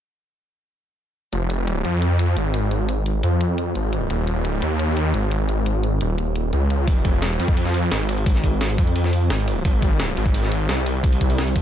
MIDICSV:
0, 0, Header, 1, 3, 480
1, 0, Start_track
1, 0, Key_signature, -4, "minor"
1, 0, Tempo, 346821
1, 1837, Time_signature, 4, 2, 24, 8
1, 16078, End_track
2, 0, Start_track
2, 0, Title_t, "Detuned saw bass"
2, 0, Program_c, 0, 39
2, 1836, Note_on_c, 0, 29, 94
2, 2537, Note_off_c, 0, 29, 0
2, 2556, Note_on_c, 0, 41, 97
2, 3257, Note_off_c, 0, 41, 0
2, 3275, Note_on_c, 0, 32, 91
2, 4457, Note_off_c, 0, 32, 0
2, 4475, Note_on_c, 0, 41, 92
2, 5176, Note_off_c, 0, 41, 0
2, 5196, Note_on_c, 0, 32, 93
2, 5657, Note_off_c, 0, 32, 0
2, 5675, Note_on_c, 0, 27, 99
2, 6376, Note_off_c, 0, 27, 0
2, 6396, Note_on_c, 0, 39, 95
2, 7097, Note_off_c, 0, 39, 0
2, 7116, Note_on_c, 0, 32, 94
2, 8297, Note_off_c, 0, 32, 0
2, 8317, Note_on_c, 0, 27, 98
2, 9018, Note_off_c, 0, 27, 0
2, 9036, Note_on_c, 0, 37, 95
2, 9497, Note_off_c, 0, 37, 0
2, 9516, Note_on_c, 0, 29, 93
2, 10217, Note_off_c, 0, 29, 0
2, 10236, Note_on_c, 0, 41, 96
2, 10937, Note_off_c, 0, 41, 0
2, 10956, Note_on_c, 0, 32, 91
2, 12137, Note_off_c, 0, 32, 0
2, 12156, Note_on_c, 0, 41, 93
2, 12857, Note_off_c, 0, 41, 0
2, 12875, Note_on_c, 0, 32, 98
2, 13337, Note_off_c, 0, 32, 0
2, 13356, Note_on_c, 0, 32, 97
2, 14057, Note_off_c, 0, 32, 0
2, 14075, Note_on_c, 0, 32, 98
2, 14777, Note_off_c, 0, 32, 0
2, 14795, Note_on_c, 0, 36, 91
2, 15976, Note_off_c, 0, 36, 0
2, 15996, Note_on_c, 0, 32, 93
2, 16078, Note_off_c, 0, 32, 0
2, 16078, End_track
3, 0, Start_track
3, 0, Title_t, "Drums"
3, 1837, Note_on_c, 9, 42, 80
3, 1975, Note_off_c, 9, 42, 0
3, 2076, Note_on_c, 9, 42, 91
3, 2214, Note_off_c, 9, 42, 0
3, 2316, Note_on_c, 9, 42, 77
3, 2454, Note_off_c, 9, 42, 0
3, 2556, Note_on_c, 9, 42, 92
3, 2694, Note_off_c, 9, 42, 0
3, 2796, Note_on_c, 9, 42, 79
3, 2935, Note_off_c, 9, 42, 0
3, 3036, Note_on_c, 9, 42, 93
3, 3174, Note_off_c, 9, 42, 0
3, 3275, Note_on_c, 9, 42, 76
3, 3414, Note_off_c, 9, 42, 0
3, 3515, Note_on_c, 9, 42, 94
3, 3653, Note_off_c, 9, 42, 0
3, 3755, Note_on_c, 9, 42, 80
3, 3894, Note_off_c, 9, 42, 0
3, 3996, Note_on_c, 9, 42, 93
3, 4134, Note_off_c, 9, 42, 0
3, 4236, Note_on_c, 9, 42, 78
3, 4374, Note_off_c, 9, 42, 0
3, 4475, Note_on_c, 9, 42, 91
3, 4614, Note_off_c, 9, 42, 0
3, 4716, Note_on_c, 9, 42, 81
3, 4854, Note_off_c, 9, 42, 0
3, 4956, Note_on_c, 9, 42, 93
3, 5094, Note_off_c, 9, 42, 0
3, 5196, Note_on_c, 9, 42, 75
3, 5334, Note_off_c, 9, 42, 0
3, 5435, Note_on_c, 9, 42, 91
3, 5574, Note_off_c, 9, 42, 0
3, 5676, Note_on_c, 9, 42, 76
3, 5814, Note_off_c, 9, 42, 0
3, 5915, Note_on_c, 9, 42, 85
3, 6054, Note_off_c, 9, 42, 0
3, 6155, Note_on_c, 9, 42, 75
3, 6294, Note_off_c, 9, 42, 0
3, 6395, Note_on_c, 9, 42, 89
3, 6534, Note_off_c, 9, 42, 0
3, 6636, Note_on_c, 9, 42, 77
3, 6774, Note_off_c, 9, 42, 0
3, 6876, Note_on_c, 9, 42, 86
3, 7014, Note_off_c, 9, 42, 0
3, 7116, Note_on_c, 9, 42, 73
3, 7254, Note_off_c, 9, 42, 0
3, 7355, Note_on_c, 9, 42, 89
3, 7494, Note_off_c, 9, 42, 0
3, 7596, Note_on_c, 9, 42, 74
3, 7734, Note_off_c, 9, 42, 0
3, 7836, Note_on_c, 9, 42, 88
3, 7974, Note_off_c, 9, 42, 0
3, 8076, Note_on_c, 9, 42, 73
3, 8214, Note_off_c, 9, 42, 0
3, 8316, Note_on_c, 9, 42, 83
3, 8454, Note_off_c, 9, 42, 0
3, 8556, Note_on_c, 9, 42, 73
3, 8694, Note_off_c, 9, 42, 0
3, 8796, Note_on_c, 9, 42, 85
3, 8935, Note_off_c, 9, 42, 0
3, 9036, Note_on_c, 9, 42, 74
3, 9175, Note_off_c, 9, 42, 0
3, 9276, Note_on_c, 9, 42, 84
3, 9415, Note_off_c, 9, 42, 0
3, 9516, Note_on_c, 9, 36, 116
3, 9516, Note_on_c, 9, 51, 86
3, 9517, Note_on_c, 9, 42, 78
3, 9655, Note_off_c, 9, 36, 0
3, 9655, Note_off_c, 9, 42, 0
3, 9655, Note_off_c, 9, 51, 0
3, 9756, Note_on_c, 9, 36, 102
3, 9756, Note_on_c, 9, 42, 89
3, 9756, Note_on_c, 9, 51, 66
3, 9894, Note_off_c, 9, 36, 0
3, 9894, Note_off_c, 9, 42, 0
3, 9894, Note_off_c, 9, 51, 0
3, 9996, Note_on_c, 9, 38, 112
3, 9996, Note_on_c, 9, 42, 74
3, 9996, Note_on_c, 9, 46, 78
3, 10134, Note_off_c, 9, 38, 0
3, 10134, Note_off_c, 9, 46, 0
3, 10135, Note_off_c, 9, 42, 0
3, 10236, Note_on_c, 9, 42, 89
3, 10236, Note_on_c, 9, 51, 66
3, 10356, Note_on_c, 9, 36, 98
3, 10374, Note_off_c, 9, 42, 0
3, 10374, Note_off_c, 9, 51, 0
3, 10476, Note_on_c, 9, 42, 75
3, 10476, Note_on_c, 9, 51, 87
3, 10494, Note_off_c, 9, 36, 0
3, 10596, Note_on_c, 9, 38, 36
3, 10614, Note_off_c, 9, 42, 0
3, 10614, Note_off_c, 9, 51, 0
3, 10715, Note_on_c, 9, 51, 67
3, 10716, Note_on_c, 9, 42, 88
3, 10734, Note_off_c, 9, 38, 0
3, 10854, Note_off_c, 9, 42, 0
3, 10854, Note_off_c, 9, 51, 0
3, 10955, Note_on_c, 9, 38, 115
3, 10955, Note_on_c, 9, 51, 84
3, 10956, Note_on_c, 9, 42, 72
3, 11094, Note_off_c, 9, 38, 0
3, 11094, Note_off_c, 9, 42, 0
3, 11094, Note_off_c, 9, 51, 0
3, 11196, Note_on_c, 9, 42, 85
3, 11196, Note_on_c, 9, 51, 65
3, 11316, Note_off_c, 9, 51, 0
3, 11316, Note_on_c, 9, 51, 43
3, 11335, Note_off_c, 9, 42, 0
3, 11435, Note_off_c, 9, 51, 0
3, 11435, Note_on_c, 9, 51, 88
3, 11436, Note_on_c, 9, 36, 113
3, 11436, Note_on_c, 9, 42, 78
3, 11556, Note_on_c, 9, 38, 48
3, 11574, Note_off_c, 9, 42, 0
3, 11574, Note_off_c, 9, 51, 0
3, 11575, Note_off_c, 9, 36, 0
3, 11676, Note_on_c, 9, 36, 56
3, 11676, Note_on_c, 9, 42, 87
3, 11676, Note_on_c, 9, 51, 68
3, 11694, Note_off_c, 9, 38, 0
3, 11814, Note_off_c, 9, 42, 0
3, 11814, Note_off_c, 9, 51, 0
3, 11815, Note_off_c, 9, 36, 0
3, 11915, Note_on_c, 9, 38, 116
3, 11915, Note_on_c, 9, 51, 87
3, 11916, Note_on_c, 9, 42, 74
3, 12035, Note_off_c, 9, 51, 0
3, 12035, Note_on_c, 9, 51, 43
3, 12054, Note_off_c, 9, 38, 0
3, 12054, Note_off_c, 9, 42, 0
3, 12156, Note_off_c, 9, 51, 0
3, 12156, Note_on_c, 9, 36, 96
3, 12156, Note_on_c, 9, 42, 89
3, 12156, Note_on_c, 9, 51, 65
3, 12276, Note_off_c, 9, 51, 0
3, 12276, Note_on_c, 9, 51, 44
3, 12294, Note_off_c, 9, 36, 0
3, 12294, Note_off_c, 9, 42, 0
3, 12395, Note_off_c, 9, 51, 0
3, 12395, Note_on_c, 9, 51, 86
3, 12396, Note_on_c, 9, 42, 78
3, 12516, Note_on_c, 9, 38, 39
3, 12533, Note_off_c, 9, 51, 0
3, 12535, Note_off_c, 9, 42, 0
3, 12636, Note_on_c, 9, 42, 92
3, 12636, Note_on_c, 9, 51, 73
3, 12654, Note_off_c, 9, 38, 0
3, 12774, Note_off_c, 9, 51, 0
3, 12775, Note_off_c, 9, 42, 0
3, 12875, Note_on_c, 9, 38, 114
3, 12875, Note_on_c, 9, 51, 89
3, 12877, Note_on_c, 9, 42, 78
3, 13014, Note_off_c, 9, 38, 0
3, 13014, Note_off_c, 9, 51, 0
3, 13015, Note_off_c, 9, 42, 0
3, 13116, Note_on_c, 9, 42, 94
3, 13116, Note_on_c, 9, 51, 69
3, 13254, Note_off_c, 9, 51, 0
3, 13255, Note_off_c, 9, 42, 0
3, 13356, Note_on_c, 9, 36, 112
3, 13356, Note_on_c, 9, 51, 89
3, 13357, Note_on_c, 9, 42, 83
3, 13494, Note_off_c, 9, 51, 0
3, 13495, Note_off_c, 9, 36, 0
3, 13495, Note_off_c, 9, 42, 0
3, 13596, Note_on_c, 9, 36, 101
3, 13596, Note_on_c, 9, 51, 67
3, 13597, Note_on_c, 9, 42, 91
3, 13734, Note_off_c, 9, 51, 0
3, 13735, Note_off_c, 9, 36, 0
3, 13735, Note_off_c, 9, 42, 0
3, 13835, Note_on_c, 9, 38, 117
3, 13835, Note_on_c, 9, 46, 81
3, 13837, Note_on_c, 9, 42, 82
3, 13973, Note_off_c, 9, 38, 0
3, 13973, Note_off_c, 9, 46, 0
3, 13975, Note_off_c, 9, 42, 0
3, 14076, Note_on_c, 9, 51, 69
3, 14077, Note_on_c, 9, 42, 89
3, 14196, Note_on_c, 9, 36, 93
3, 14214, Note_off_c, 9, 51, 0
3, 14215, Note_off_c, 9, 42, 0
3, 14316, Note_on_c, 9, 42, 82
3, 14316, Note_on_c, 9, 51, 92
3, 14334, Note_off_c, 9, 36, 0
3, 14436, Note_on_c, 9, 38, 35
3, 14454, Note_off_c, 9, 51, 0
3, 14455, Note_off_c, 9, 42, 0
3, 14556, Note_on_c, 9, 42, 95
3, 14556, Note_on_c, 9, 51, 71
3, 14574, Note_off_c, 9, 38, 0
3, 14694, Note_off_c, 9, 51, 0
3, 14695, Note_off_c, 9, 42, 0
3, 14796, Note_on_c, 9, 38, 111
3, 14796, Note_on_c, 9, 42, 77
3, 14796, Note_on_c, 9, 51, 89
3, 14934, Note_off_c, 9, 38, 0
3, 14934, Note_off_c, 9, 42, 0
3, 14934, Note_off_c, 9, 51, 0
3, 15036, Note_on_c, 9, 42, 92
3, 15036, Note_on_c, 9, 51, 77
3, 15174, Note_off_c, 9, 51, 0
3, 15175, Note_off_c, 9, 42, 0
3, 15276, Note_on_c, 9, 36, 112
3, 15276, Note_on_c, 9, 42, 85
3, 15276, Note_on_c, 9, 51, 61
3, 15396, Note_off_c, 9, 51, 0
3, 15396, Note_on_c, 9, 51, 81
3, 15414, Note_off_c, 9, 42, 0
3, 15415, Note_off_c, 9, 36, 0
3, 15515, Note_on_c, 9, 42, 97
3, 15516, Note_on_c, 9, 36, 59
3, 15534, Note_off_c, 9, 51, 0
3, 15636, Note_on_c, 9, 51, 62
3, 15654, Note_off_c, 9, 42, 0
3, 15655, Note_off_c, 9, 36, 0
3, 15755, Note_on_c, 9, 42, 80
3, 15756, Note_off_c, 9, 51, 0
3, 15756, Note_on_c, 9, 38, 113
3, 15756, Note_on_c, 9, 51, 86
3, 15876, Note_off_c, 9, 51, 0
3, 15876, Note_on_c, 9, 51, 42
3, 15894, Note_off_c, 9, 38, 0
3, 15894, Note_off_c, 9, 42, 0
3, 15995, Note_on_c, 9, 42, 95
3, 15996, Note_off_c, 9, 51, 0
3, 15996, Note_on_c, 9, 36, 95
3, 15996, Note_on_c, 9, 51, 66
3, 16078, Note_off_c, 9, 36, 0
3, 16078, Note_off_c, 9, 42, 0
3, 16078, Note_off_c, 9, 51, 0
3, 16078, End_track
0, 0, End_of_file